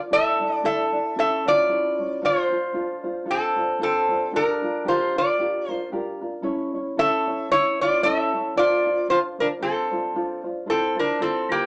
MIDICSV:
0, 0, Header, 1, 3, 480
1, 0, Start_track
1, 0, Key_signature, -1, "minor"
1, 0, Tempo, 528169
1, 95, Time_signature, 4, 2, 24, 8
1, 10597, End_track
2, 0, Start_track
2, 0, Title_t, "Resonator guitar played with a steel bar"
2, 0, Program_c, 0, 25
2, 118, Note_on_c, 0, 76, 108
2, 122, Note_on_c, 0, 69, 83
2, 557, Note_off_c, 0, 69, 0
2, 587, Note_off_c, 0, 76, 0
2, 590, Note_on_c, 0, 69, 68
2, 598, Note_on_c, 0, 76, 89
2, 1030, Note_off_c, 0, 69, 0
2, 1077, Note_off_c, 0, 76, 0
2, 1079, Note_on_c, 0, 69, 70
2, 1088, Note_on_c, 0, 76, 88
2, 1320, Note_off_c, 0, 69, 0
2, 1342, Note_on_c, 0, 65, 71
2, 1344, Note_off_c, 0, 76, 0
2, 1348, Note_on_c, 0, 74, 96
2, 1988, Note_off_c, 0, 65, 0
2, 2043, Note_on_c, 0, 65, 69
2, 2046, Note_off_c, 0, 74, 0
2, 2049, Note_on_c, 0, 72, 94
2, 2954, Note_off_c, 0, 65, 0
2, 3001, Note_off_c, 0, 72, 0
2, 3005, Note_on_c, 0, 69, 87
2, 3007, Note_on_c, 0, 60, 59
2, 3440, Note_off_c, 0, 60, 0
2, 3471, Note_off_c, 0, 69, 0
2, 3482, Note_on_c, 0, 69, 81
2, 3486, Note_on_c, 0, 60, 61
2, 3917, Note_off_c, 0, 69, 0
2, 3919, Note_off_c, 0, 60, 0
2, 3962, Note_on_c, 0, 62, 66
2, 3963, Note_on_c, 0, 70, 87
2, 4397, Note_off_c, 0, 62, 0
2, 4397, Note_off_c, 0, 70, 0
2, 4437, Note_on_c, 0, 72, 79
2, 4443, Note_on_c, 0, 65, 61
2, 4683, Note_off_c, 0, 65, 0
2, 4706, Note_off_c, 0, 72, 0
2, 4709, Note_on_c, 0, 65, 59
2, 4709, Note_on_c, 0, 74, 79
2, 5182, Note_off_c, 0, 74, 0
2, 5182, Note_on_c, 0, 72, 79
2, 5352, Note_off_c, 0, 72, 0
2, 5353, Note_off_c, 0, 65, 0
2, 6353, Note_on_c, 0, 76, 102
2, 6359, Note_on_c, 0, 69, 76
2, 6796, Note_off_c, 0, 69, 0
2, 6826, Note_off_c, 0, 76, 0
2, 6830, Note_on_c, 0, 73, 102
2, 6843, Note_on_c, 0, 64, 73
2, 7083, Note_off_c, 0, 64, 0
2, 7098, Note_off_c, 0, 73, 0
2, 7101, Note_on_c, 0, 74, 95
2, 7114, Note_on_c, 0, 65, 68
2, 7297, Note_off_c, 0, 74, 0
2, 7298, Note_off_c, 0, 65, 0
2, 7300, Note_on_c, 0, 76, 98
2, 7316, Note_on_c, 0, 69, 78
2, 7755, Note_off_c, 0, 69, 0
2, 7789, Note_off_c, 0, 76, 0
2, 7792, Note_on_c, 0, 74, 96
2, 7807, Note_on_c, 0, 65, 72
2, 8241, Note_off_c, 0, 65, 0
2, 8266, Note_off_c, 0, 74, 0
2, 8270, Note_on_c, 0, 72, 85
2, 8284, Note_on_c, 0, 65, 66
2, 8341, Note_off_c, 0, 72, 0
2, 8354, Note_off_c, 0, 65, 0
2, 8545, Note_on_c, 0, 70, 76
2, 8556, Note_on_c, 0, 62, 61
2, 8600, Note_off_c, 0, 70, 0
2, 8609, Note_off_c, 0, 62, 0
2, 8747, Note_on_c, 0, 69, 71
2, 8754, Note_on_c, 0, 60, 53
2, 9457, Note_off_c, 0, 69, 0
2, 9461, Note_off_c, 0, 60, 0
2, 9723, Note_on_c, 0, 69, 81
2, 9726, Note_on_c, 0, 60, 57
2, 9965, Note_off_c, 0, 60, 0
2, 9987, Note_off_c, 0, 69, 0
2, 9991, Note_on_c, 0, 70, 71
2, 9996, Note_on_c, 0, 62, 64
2, 10179, Note_off_c, 0, 62, 0
2, 10193, Note_off_c, 0, 70, 0
2, 10196, Note_on_c, 0, 69, 73
2, 10197, Note_on_c, 0, 60, 61
2, 10441, Note_off_c, 0, 60, 0
2, 10465, Note_on_c, 0, 58, 59
2, 10466, Note_off_c, 0, 69, 0
2, 10467, Note_on_c, 0, 67, 73
2, 10597, Note_off_c, 0, 58, 0
2, 10597, Note_off_c, 0, 67, 0
2, 10597, End_track
3, 0, Start_track
3, 0, Title_t, "Ukulele"
3, 0, Program_c, 1, 24
3, 0, Note_on_c, 1, 65, 47
3, 0, Note_on_c, 1, 70, 46
3, 0, Note_on_c, 1, 77, 51
3, 94, Note_off_c, 1, 77, 0
3, 97, Note_on_c, 1, 69, 75
3, 99, Note_off_c, 1, 70, 0
3, 100, Note_off_c, 1, 65, 0
3, 103, Note_on_c, 1, 62, 77
3, 106, Note_on_c, 1, 64, 69
3, 113, Note_on_c, 1, 74, 82
3, 353, Note_off_c, 1, 74, 0
3, 360, Note_off_c, 1, 69, 0
3, 362, Note_off_c, 1, 64, 0
3, 363, Note_on_c, 1, 74, 51
3, 367, Note_off_c, 1, 62, 0
3, 373, Note_on_c, 1, 64, 43
3, 377, Note_on_c, 1, 62, 43
3, 569, Note_off_c, 1, 62, 0
3, 574, Note_off_c, 1, 64, 0
3, 575, Note_off_c, 1, 74, 0
3, 577, Note_on_c, 1, 69, 65
3, 580, Note_on_c, 1, 62, 78
3, 584, Note_on_c, 1, 64, 78
3, 588, Note_on_c, 1, 74, 90
3, 830, Note_off_c, 1, 74, 0
3, 838, Note_off_c, 1, 64, 0
3, 841, Note_on_c, 1, 74, 50
3, 845, Note_off_c, 1, 62, 0
3, 847, Note_off_c, 1, 69, 0
3, 849, Note_on_c, 1, 64, 42
3, 856, Note_on_c, 1, 62, 41
3, 1050, Note_off_c, 1, 74, 0
3, 1054, Note_off_c, 1, 62, 0
3, 1054, Note_off_c, 1, 64, 0
3, 1054, Note_on_c, 1, 69, 61
3, 1058, Note_on_c, 1, 61, 62
3, 1065, Note_on_c, 1, 64, 63
3, 1069, Note_on_c, 1, 73, 62
3, 1311, Note_off_c, 1, 73, 0
3, 1318, Note_off_c, 1, 69, 0
3, 1322, Note_on_c, 1, 73, 55
3, 1324, Note_off_c, 1, 64, 0
3, 1327, Note_off_c, 1, 61, 0
3, 1335, Note_on_c, 1, 64, 55
3, 1344, Note_on_c, 1, 61, 43
3, 1529, Note_off_c, 1, 61, 0
3, 1530, Note_off_c, 1, 64, 0
3, 1534, Note_off_c, 1, 73, 0
3, 1536, Note_on_c, 1, 69, 73
3, 1540, Note_on_c, 1, 61, 68
3, 1541, Note_on_c, 1, 64, 85
3, 1547, Note_on_c, 1, 73, 88
3, 1797, Note_off_c, 1, 73, 0
3, 1806, Note_off_c, 1, 64, 0
3, 1806, Note_off_c, 1, 69, 0
3, 1808, Note_on_c, 1, 73, 48
3, 1809, Note_off_c, 1, 61, 0
3, 1817, Note_on_c, 1, 64, 48
3, 1826, Note_on_c, 1, 61, 40
3, 2012, Note_off_c, 1, 61, 0
3, 2014, Note_on_c, 1, 69, 65
3, 2016, Note_on_c, 1, 62, 68
3, 2017, Note_off_c, 1, 73, 0
3, 2018, Note_off_c, 1, 64, 0
3, 2021, Note_on_c, 1, 65, 76
3, 2026, Note_on_c, 1, 72, 76
3, 2268, Note_off_c, 1, 72, 0
3, 2278, Note_on_c, 1, 72, 44
3, 2279, Note_off_c, 1, 65, 0
3, 2282, Note_off_c, 1, 62, 0
3, 2286, Note_off_c, 1, 69, 0
3, 2290, Note_on_c, 1, 65, 49
3, 2293, Note_on_c, 1, 62, 38
3, 2481, Note_off_c, 1, 62, 0
3, 2482, Note_off_c, 1, 65, 0
3, 2485, Note_on_c, 1, 69, 75
3, 2489, Note_off_c, 1, 72, 0
3, 2492, Note_on_c, 1, 62, 74
3, 2493, Note_on_c, 1, 65, 87
3, 2500, Note_on_c, 1, 72, 88
3, 2750, Note_off_c, 1, 72, 0
3, 2753, Note_off_c, 1, 65, 0
3, 2760, Note_on_c, 1, 72, 60
3, 2762, Note_off_c, 1, 69, 0
3, 2764, Note_on_c, 1, 65, 54
3, 2765, Note_off_c, 1, 62, 0
3, 2775, Note_on_c, 1, 62, 43
3, 2952, Note_off_c, 1, 62, 0
3, 2958, Note_off_c, 1, 65, 0
3, 2958, Note_on_c, 1, 69, 63
3, 2963, Note_on_c, 1, 62, 65
3, 2969, Note_off_c, 1, 72, 0
3, 2969, Note_on_c, 1, 65, 56
3, 2980, Note_on_c, 1, 72, 57
3, 3228, Note_off_c, 1, 72, 0
3, 3238, Note_off_c, 1, 69, 0
3, 3239, Note_on_c, 1, 72, 57
3, 3240, Note_off_c, 1, 65, 0
3, 3241, Note_off_c, 1, 62, 0
3, 3251, Note_on_c, 1, 65, 48
3, 3257, Note_on_c, 1, 62, 42
3, 3445, Note_off_c, 1, 62, 0
3, 3447, Note_off_c, 1, 65, 0
3, 3448, Note_on_c, 1, 69, 70
3, 3453, Note_off_c, 1, 72, 0
3, 3456, Note_on_c, 1, 62, 76
3, 3458, Note_on_c, 1, 65, 79
3, 3464, Note_on_c, 1, 72, 80
3, 3704, Note_off_c, 1, 72, 0
3, 3715, Note_off_c, 1, 65, 0
3, 3715, Note_on_c, 1, 72, 55
3, 3723, Note_off_c, 1, 69, 0
3, 3724, Note_off_c, 1, 62, 0
3, 3726, Note_on_c, 1, 65, 45
3, 3735, Note_on_c, 1, 62, 44
3, 3927, Note_off_c, 1, 62, 0
3, 3929, Note_off_c, 1, 65, 0
3, 3930, Note_on_c, 1, 67, 73
3, 3931, Note_off_c, 1, 72, 0
3, 3938, Note_on_c, 1, 62, 77
3, 3940, Note_on_c, 1, 65, 74
3, 3941, Note_on_c, 1, 70, 86
3, 4190, Note_off_c, 1, 70, 0
3, 4201, Note_on_c, 1, 70, 52
3, 4202, Note_off_c, 1, 65, 0
3, 4204, Note_off_c, 1, 67, 0
3, 4208, Note_off_c, 1, 62, 0
3, 4213, Note_on_c, 1, 65, 47
3, 4218, Note_on_c, 1, 62, 42
3, 4402, Note_off_c, 1, 62, 0
3, 4406, Note_off_c, 1, 65, 0
3, 4408, Note_on_c, 1, 67, 79
3, 4409, Note_off_c, 1, 70, 0
3, 4413, Note_on_c, 1, 62, 76
3, 4417, Note_on_c, 1, 65, 86
3, 4419, Note_on_c, 1, 70, 92
3, 4675, Note_off_c, 1, 70, 0
3, 4682, Note_off_c, 1, 65, 0
3, 4684, Note_off_c, 1, 67, 0
3, 4686, Note_off_c, 1, 62, 0
3, 4686, Note_on_c, 1, 70, 52
3, 4693, Note_on_c, 1, 65, 51
3, 4705, Note_on_c, 1, 62, 41
3, 4896, Note_off_c, 1, 62, 0
3, 4897, Note_off_c, 1, 70, 0
3, 4898, Note_off_c, 1, 65, 0
3, 4899, Note_on_c, 1, 67, 55
3, 4907, Note_on_c, 1, 62, 60
3, 4909, Note_on_c, 1, 65, 64
3, 4914, Note_on_c, 1, 70, 65
3, 5154, Note_off_c, 1, 70, 0
3, 5165, Note_on_c, 1, 70, 54
3, 5166, Note_off_c, 1, 65, 0
3, 5169, Note_off_c, 1, 67, 0
3, 5173, Note_off_c, 1, 62, 0
3, 5176, Note_on_c, 1, 65, 50
3, 5186, Note_on_c, 1, 62, 44
3, 5371, Note_off_c, 1, 62, 0
3, 5377, Note_off_c, 1, 65, 0
3, 5377, Note_off_c, 1, 70, 0
3, 5380, Note_on_c, 1, 67, 90
3, 5382, Note_on_c, 1, 62, 95
3, 5388, Note_on_c, 1, 65, 98
3, 5392, Note_on_c, 1, 70, 95
3, 5635, Note_off_c, 1, 70, 0
3, 5645, Note_off_c, 1, 65, 0
3, 5646, Note_on_c, 1, 70, 55
3, 5649, Note_off_c, 1, 67, 0
3, 5651, Note_off_c, 1, 62, 0
3, 5656, Note_on_c, 1, 65, 52
3, 5663, Note_on_c, 1, 62, 51
3, 5837, Note_on_c, 1, 69, 79
3, 5842, Note_off_c, 1, 62, 0
3, 5843, Note_off_c, 1, 65, 0
3, 5845, Note_on_c, 1, 61, 96
3, 5847, Note_on_c, 1, 64, 95
3, 5852, Note_off_c, 1, 70, 0
3, 5856, Note_on_c, 1, 73, 88
3, 6115, Note_off_c, 1, 73, 0
3, 6118, Note_off_c, 1, 69, 0
3, 6122, Note_off_c, 1, 61, 0
3, 6123, Note_off_c, 1, 64, 0
3, 6126, Note_on_c, 1, 73, 52
3, 6133, Note_on_c, 1, 64, 58
3, 6141, Note_on_c, 1, 61, 46
3, 6331, Note_off_c, 1, 61, 0
3, 6334, Note_off_c, 1, 64, 0
3, 6336, Note_on_c, 1, 69, 76
3, 6338, Note_off_c, 1, 73, 0
3, 6342, Note_on_c, 1, 61, 81
3, 6345, Note_on_c, 1, 64, 89
3, 6349, Note_on_c, 1, 73, 90
3, 6599, Note_off_c, 1, 73, 0
3, 6608, Note_off_c, 1, 69, 0
3, 6610, Note_off_c, 1, 64, 0
3, 6610, Note_on_c, 1, 73, 57
3, 6611, Note_off_c, 1, 61, 0
3, 6621, Note_on_c, 1, 64, 45
3, 6632, Note_on_c, 1, 61, 49
3, 6814, Note_off_c, 1, 61, 0
3, 6819, Note_off_c, 1, 64, 0
3, 6819, Note_off_c, 1, 73, 0
3, 6819, Note_on_c, 1, 69, 57
3, 6825, Note_on_c, 1, 61, 56
3, 6830, Note_on_c, 1, 64, 57
3, 7089, Note_off_c, 1, 69, 0
3, 7092, Note_off_c, 1, 61, 0
3, 7092, Note_off_c, 1, 64, 0
3, 7095, Note_on_c, 1, 73, 60
3, 7103, Note_on_c, 1, 64, 48
3, 7110, Note_on_c, 1, 61, 40
3, 7289, Note_off_c, 1, 61, 0
3, 7292, Note_on_c, 1, 69, 71
3, 7294, Note_off_c, 1, 64, 0
3, 7297, Note_off_c, 1, 73, 0
3, 7300, Note_on_c, 1, 61, 78
3, 7305, Note_on_c, 1, 64, 91
3, 7308, Note_on_c, 1, 73, 77
3, 7564, Note_off_c, 1, 73, 0
3, 7566, Note_off_c, 1, 69, 0
3, 7570, Note_off_c, 1, 61, 0
3, 7573, Note_off_c, 1, 64, 0
3, 7575, Note_on_c, 1, 73, 52
3, 7583, Note_on_c, 1, 64, 49
3, 7588, Note_on_c, 1, 61, 40
3, 7780, Note_on_c, 1, 69, 81
3, 7782, Note_off_c, 1, 61, 0
3, 7782, Note_off_c, 1, 73, 0
3, 7786, Note_off_c, 1, 64, 0
3, 7786, Note_on_c, 1, 62, 72
3, 7790, Note_on_c, 1, 65, 76
3, 7797, Note_on_c, 1, 72, 87
3, 8038, Note_off_c, 1, 72, 0
3, 8049, Note_on_c, 1, 72, 43
3, 8050, Note_off_c, 1, 65, 0
3, 8050, Note_off_c, 1, 69, 0
3, 8053, Note_off_c, 1, 62, 0
3, 8061, Note_on_c, 1, 65, 47
3, 8069, Note_on_c, 1, 62, 43
3, 8255, Note_off_c, 1, 62, 0
3, 8257, Note_on_c, 1, 69, 73
3, 8258, Note_off_c, 1, 65, 0
3, 8259, Note_off_c, 1, 72, 0
3, 8266, Note_on_c, 1, 62, 78
3, 8269, Note_on_c, 1, 65, 76
3, 8273, Note_on_c, 1, 72, 85
3, 8521, Note_off_c, 1, 72, 0
3, 8529, Note_off_c, 1, 69, 0
3, 8531, Note_off_c, 1, 65, 0
3, 8532, Note_on_c, 1, 72, 49
3, 8533, Note_off_c, 1, 62, 0
3, 8541, Note_on_c, 1, 65, 49
3, 8549, Note_on_c, 1, 62, 43
3, 8726, Note_off_c, 1, 62, 0
3, 8730, Note_on_c, 1, 69, 57
3, 8733, Note_off_c, 1, 65, 0
3, 8737, Note_on_c, 1, 62, 52
3, 8741, Note_off_c, 1, 72, 0
3, 8744, Note_on_c, 1, 65, 61
3, 8752, Note_on_c, 1, 72, 65
3, 8998, Note_off_c, 1, 72, 0
3, 9005, Note_off_c, 1, 69, 0
3, 9007, Note_off_c, 1, 65, 0
3, 9009, Note_off_c, 1, 62, 0
3, 9009, Note_on_c, 1, 72, 56
3, 9017, Note_on_c, 1, 65, 52
3, 9027, Note_on_c, 1, 62, 41
3, 9217, Note_off_c, 1, 62, 0
3, 9219, Note_off_c, 1, 65, 0
3, 9219, Note_off_c, 1, 72, 0
3, 9222, Note_on_c, 1, 69, 66
3, 9228, Note_on_c, 1, 62, 76
3, 9230, Note_on_c, 1, 65, 74
3, 9235, Note_on_c, 1, 72, 88
3, 9478, Note_off_c, 1, 72, 0
3, 9485, Note_off_c, 1, 65, 0
3, 9489, Note_on_c, 1, 72, 53
3, 9491, Note_off_c, 1, 69, 0
3, 9494, Note_off_c, 1, 62, 0
3, 9496, Note_on_c, 1, 65, 56
3, 9504, Note_on_c, 1, 62, 51
3, 9686, Note_off_c, 1, 72, 0
3, 9690, Note_on_c, 1, 69, 64
3, 9692, Note_off_c, 1, 65, 0
3, 9698, Note_on_c, 1, 64, 75
3, 9699, Note_off_c, 1, 62, 0
3, 9701, Note_on_c, 1, 72, 78
3, 9703, Note_on_c, 1, 65, 74
3, 9942, Note_off_c, 1, 72, 0
3, 9952, Note_off_c, 1, 65, 0
3, 9953, Note_on_c, 1, 72, 48
3, 9955, Note_off_c, 1, 64, 0
3, 9963, Note_on_c, 1, 65, 46
3, 9965, Note_off_c, 1, 69, 0
3, 9966, Note_on_c, 1, 64, 43
3, 10167, Note_off_c, 1, 64, 0
3, 10167, Note_on_c, 1, 69, 58
3, 10171, Note_off_c, 1, 72, 0
3, 10172, Note_off_c, 1, 65, 0
3, 10178, Note_on_c, 1, 64, 55
3, 10183, Note_on_c, 1, 65, 66
3, 10186, Note_on_c, 1, 72, 72
3, 10430, Note_off_c, 1, 72, 0
3, 10440, Note_off_c, 1, 65, 0
3, 10441, Note_on_c, 1, 72, 53
3, 10443, Note_off_c, 1, 69, 0
3, 10445, Note_off_c, 1, 64, 0
3, 10451, Note_on_c, 1, 65, 43
3, 10456, Note_on_c, 1, 64, 39
3, 10597, Note_off_c, 1, 64, 0
3, 10597, Note_off_c, 1, 65, 0
3, 10597, Note_off_c, 1, 72, 0
3, 10597, End_track
0, 0, End_of_file